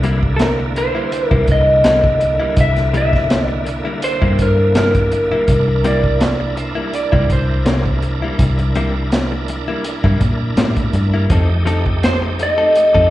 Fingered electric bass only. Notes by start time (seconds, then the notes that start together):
Already playing: C2
1.31 C2
1.48 C2
2.57 C2
4.22 G2
5.31 muted fingered electric bass stroke
5.48 C2
7.13 C2
7.30 C2
8.39 C2
10.04 G2
10.21 A#2
10.57 A2
10.93 G2
11.30 F2
12.95 F2